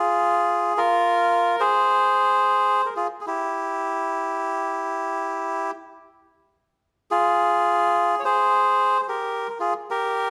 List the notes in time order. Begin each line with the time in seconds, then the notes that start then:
Already playing: F4 G#4
0.77 F4 A#4
1.60 G#4 C5
2.86 A#4
2.96 F4 G#4
3.21 G#4
3.27 E4 G4
7.11 F4 G#4
8.19 C#5
8.25 G#4 C5
9.03 C5
9.08 G4 A#4
9.50 A#4
9.60 F4 G#4
9.91 G4 A#4